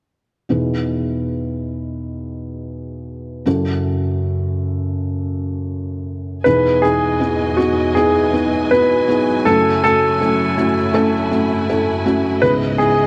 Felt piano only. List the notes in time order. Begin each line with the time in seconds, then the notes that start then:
0.49 E2 B2 B3 D#4 E4 G#4
3.46 F#2 C#3 C#4 E4 F#4 A4
6.46 E2 B2 B3 D#4 E4 G#4
6.83 B3 D#4 E4 G#4
7.20 B3 D#4 E4 G#4
7.58 B3 D#4 E4 G#4
7.96 B3 D#4 E4 G#4
8.33 B3 D#4 E4 B4
8.71 B3 D#4 E4 F#4
9.08 B3 D#4 E4 G#4
9.45 F#2 C#3 A3 C#4 E4 F#4
9.83 A3 C#4 E4 F#4
10.20 A3 C#4 E4 A4
10.57 A3 C#4 E4 F#4
10.94 A3 C#4 E4 A4
11.31 A3 C#4 E4 F#4
11.69 A3 C#4 E4 A4
12.05 A3 C#4 E4 F#4
12.42 C#2 G#2 B3 C#4 E4 G#4
12.79 B3 C#4 E4 G#4